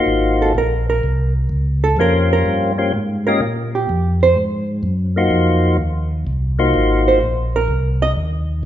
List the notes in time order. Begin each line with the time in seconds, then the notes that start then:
Already playing: A#3 D#4 F4 F#4 C5
0.06 G#1
0.42 A4
0.55 A#1 A#4
0.90 A#4
1.03 C2
1.49 C#2
1.84 A4
1.97 F2 A#3 C#4 F4 G4 C5
2.01 A#4
2.33 A#4
2.46 G2
2.78 A#3 C#4 F4 G4 C5
2.94 G#2
3.27 A#3 C#4 F4 G4 A#4 D#5
3.40 A#2
3.75 G4
3.89 F2
4.23 C5
4.36 G#2
4.83 F#2
5.16 A#3 D#4 F4 F#4 C5
5.31 F2
5.78 D#2
6.27 C2
6.59 A#3 D#4 F4 F#4 C5
6.74 G#1
7.08 C5
7.21 A#1
7.56 A#4
7.68 C2
8.02 D#5
8.16 D#2